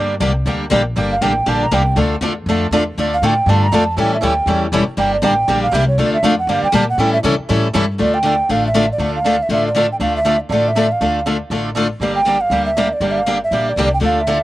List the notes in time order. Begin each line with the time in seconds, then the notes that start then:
Already playing: G2 D3 G3 A#3 D4 G4
0.20 C2 D3 G3 A#3 D4 G4
0.45 D2 D3 G3 A#3 D4 G4
0.70 A#1 D3 G3 A#3 D4 G4
0.96 G1 D3 G3 A#3 D4 G4
1.12 F5
1.21 A1 D3 G3 A#3 D4 G4 G5
1.46 A#1 D3 G3 A#3 D4 G4 A5
1.63 A#5
1.71 C2 D3 G3 A#3 D4 G4 G5
1.96 D2 D3 A3 D4 F4 A4
2.21 E2 D3 A3 D4 F4 A4
2.46 F2 D3 A3 D4 F4 A4
2.71 E2 D3 A3 D4 F4 A4
2.97 D2 D3 A3 D4 F4 A4
3.14 F5
3.22 A2 D3 A3 D4 F4 A4 G5
3.46 G2 D3 A3 D4 F4 A4
3.50 A5
3.63 A#5
3.72 F2 D3 A3 D4 F4 A4 A5
3.97 A2 E3 G3 C#4 E4 A4 G5
4.14 E5
4.22 D2 E3 G3 C#4 E4 A4 G5
4.46 E2 E3 G3 C#4 E4 A4
4.72 E1 E3 G3 C#4 E4 A4
4.97 G1 D3 G3 A#3 D4 G4 G5
5.14 D5
5.22 A1 D3 G3 A#3 D4 G4 G5
5.48 A#1 D3 G3 A#3 D4 G4
5.63 F5
5.72 C2 D3 G3 A#3 D4 G4 E5
5.88 C#5
5.98 D2 D3 A3 D4 F4 A4 D5
6.13 E5
6.23 F2 D3 A3 D4 F4 A4 F5
6.39 F#5
6.47 G2 D3 G3 A#3 D4 G4 F5
6.63 G5, muted upright bass stroke
6.72 A#2 D3 G3 A#3 D4 G4 A5
6.89 F#5
6.98 A2 E3 G3 C#4 E4 A4 G5
7.13 E5
7.24 C#3 E3 G3 C#4 E4 A4
7.39 muted upright bass stroke
7.49 A2 E3 G3 C#4 E4 A4
7.74 G2 E3 G3 C#4 E4 A4
7.98 D2 D3 A3 D4 F4 A4 D5
8.14 G5
8.23 D3 A3 D4 F4 A4
8.49 A1 D3 A3 D4 F4 A4 F5
8.67 E5
8.74 D3 A3 D4 F4 A4
8.92 D5
8.98 D2 D3 A3 D4 F4 A4
9.15 F5
9.26 D3 A3 D4 F4 A4
9.43 E5
9.49 A1 D3 A3 D4 F4 A4 E5
9.67 D5
9.75 D3 A3 D4 F4 A4
9.92 G5
10.00 D2 D3 A3 D4 F4 A4 F5
10.17 E5
10.25 D3 A3 D4 F4 A4
10.49 A1 D3 A3 D4 F4 A4 D5
10.68 E5
10.76 D3 A3 D4 F4 A4
10.92 F5
11.01 D2 D3 A3 D4 F4 A4
11.26 D3 A3 D4 F4 A4
11.50 A1 D3 A3 D4 F4 A4
11.76 D3 A3 D4 F4 A4
12.00 G1 D3 G3 A#3 D4 G4 D5
12.15 G5
12.25 D3 G3 A#3 D4 G4
12.41 F5
12.50 D2 D3 G3 A#3 D4 G4
12.66 E5
12.77 D3 G3 A#3 D4 G4
12.93 D5
13.00 G1 D3 G3 A#3 D4 G4
13.11 E5
13.18 F5
13.26 D3 G3 A#3 D4 G4
13.44 E5
13.51 A#1 D3 G3 A#3 D4 G4
13.70 D5
13.76 C2 D3 G3 A#3 D4 G4
13.94 G5
14.00 D2 D3 A3 D4 F4 A4
14.05 F5
14.21 E5
14.27 D3 A3 D4 F4 A4